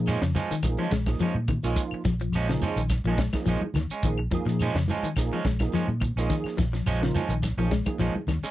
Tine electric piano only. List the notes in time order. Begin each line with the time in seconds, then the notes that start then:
Already playing: F3 A#3 D#4 G#4
0.63 F3 A#3 D#4 G#4
1.06 F3 A#3 D#4 G#4
1.63 F3 A#3 D#4 F4
2.49 F3 A#3 D#4 G#4
3.06 F3 A#3 D#4 G#4
3.34 F3 A#3 D#4 G#4
4.04 F3 A#3 D#4 G#4
4.33 F3 A#3 D#4 G#4
5.17 F3 A#3 D#4 G#4
5.61 F3 A#3 D#4 G#4
6.17 F3 A#3 D#4 G#4
7.01 F3 A#3 D#4 F4
7.58 F3 A#3 D#4 G#4
7.86 F3 A#3 D#4 G#4